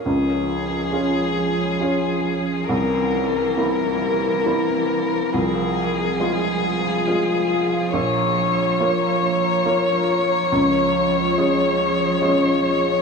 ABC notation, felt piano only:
X:1
M:3/4
L:1/8
Q:1/4=69
K:Db
V:1 name="Felt piano"
D,,2 [DFA]2 [DFA]2 | C,,2 [B,=Ec]2 [B,Ec]2 | C,,2 [A,Fc]2 [A,Fc]2 | B,,,2 [B,Fd]2 [B,Fd]2 |
D,,2 [A,Fd]2 [A,Fd]2 |]